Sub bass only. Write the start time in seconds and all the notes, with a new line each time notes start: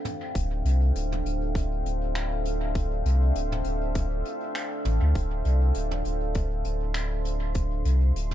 0.35 D1
0.65 C2
0.95 D1
1.25 D1
1.85 D1
3.05 C2
3.35 D1
3.65 D1
4.85 A1
5.02 D2
5.15 D1
5.45 C2
5.76 D1
6.05 D1
6.65 D1
7.85 C2
8.15 D1